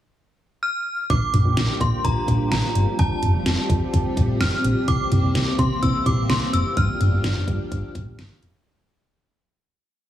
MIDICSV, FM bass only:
0, 0, Header, 1, 2, 480
1, 0, Start_track
1, 0, Tempo, 472441
1, 1118, Time_signature, 4, 2, 24, 8
1, 10260, End_track
2, 0, Start_track
2, 0, Title_t, "FM bass"
2, 0, Program_c, 0, 39
2, 1117, Note_on_c, 0, 34, 105
2, 1226, Note_off_c, 0, 34, 0
2, 1357, Note_on_c, 0, 34, 100
2, 1466, Note_off_c, 0, 34, 0
2, 1477, Note_on_c, 0, 34, 98
2, 1586, Note_off_c, 0, 34, 0
2, 1597, Note_on_c, 0, 34, 112
2, 1705, Note_off_c, 0, 34, 0
2, 1834, Note_on_c, 0, 46, 101
2, 1944, Note_off_c, 0, 46, 0
2, 2078, Note_on_c, 0, 34, 101
2, 2186, Note_off_c, 0, 34, 0
2, 2316, Note_on_c, 0, 34, 98
2, 2425, Note_off_c, 0, 34, 0
2, 2557, Note_on_c, 0, 34, 101
2, 2665, Note_off_c, 0, 34, 0
2, 2797, Note_on_c, 0, 31, 92
2, 2905, Note_off_c, 0, 31, 0
2, 3037, Note_on_c, 0, 29, 103
2, 3146, Note_off_c, 0, 29, 0
2, 3278, Note_on_c, 0, 29, 97
2, 3386, Note_off_c, 0, 29, 0
2, 3397, Note_on_c, 0, 29, 97
2, 3506, Note_off_c, 0, 29, 0
2, 3516, Note_on_c, 0, 29, 97
2, 3625, Note_off_c, 0, 29, 0
2, 3754, Note_on_c, 0, 41, 102
2, 3864, Note_off_c, 0, 41, 0
2, 3999, Note_on_c, 0, 29, 103
2, 4106, Note_off_c, 0, 29, 0
2, 4237, Note_on_c, 0, 29, 102
2, 4345, Note_off_c, 0, 29, 0
2, 4477, Note_on_c, 0, 29, 101
2, 4585, Note_off_c, 0, 29, 0
2, 4717, Note_on_c, 0, 34, 86
2, 4825, Note_off_c, 0, 34, 0
2, 4958, Note_on_c, 0, 36, 99
2, 5066, Note_off_c, 0, 36, 0
2, 5198, Note_on_c, 0, 36, 108
2, 5306, Note_off_c, 0, 36, 0
2, 5319, Note_on_c, 0, 36, 91
2, 5426, Note_off_c, 0, 36, 0
2, 5438, Note_on_c, 0, 36, 108
2, 5546, Note_off_c, 0, 36, 0
2, 5675, Note_on_c, 0, 48, 101
2, 5784, Note_off_c, 0, 48, 0
2, 5920, Note_on_c, 0, 36, 113
2, 6027, Note_off_c, 0, 36, 0
2, 6157, Note_on_c, 0, 36, 102
2, 6266, Note_off_c, 0, 36, 0
2, 6397, Note_on_c, 0, 36, 100
2, 6506, Note_off_c, 0, 36, 0
2, 6637, Note_on_c, 0, 29, 91
2, 6745, Note_off_c, 0, 29, 0
2, 6878, Note_on_c, 0, 31, 102
2, 6986, Note_off_c, 0, 31, 0
2, 7118, Note_on_c, 0, 31, 101
2, 7226, Note_off_c, 0, 31, 0
2, 7237, Note_on_c, 0, 31, 98
2, 7346, Note_off_c, 0, 31, 0
2, 7357, Note_on_c, 0, 31, 108
2, 7466, Note_off_c, 0, 31, 0
2, 7595, Note_on_c, 0, 43, 93
2, 7705, Note_off_c, 0, 43, 0
2, 7840, Note_on_c, 0, 31, 107
2, 7947, Note_off_c, 0, 31, 0
2, 8078, Note_on_c, 0, 31, 104
2, 8186, Note_off_c, 0, 31, 0
2, 8318, Note_on_c, 0, 31, 105
2, 8426, Note_off_c, 0, 31, 0
2, 8559, Note_on_c, 0, 29, 86
2, 8666, Note_off_c, 0, 29, 0
2, 10260, End_track
0, 0, End_of_file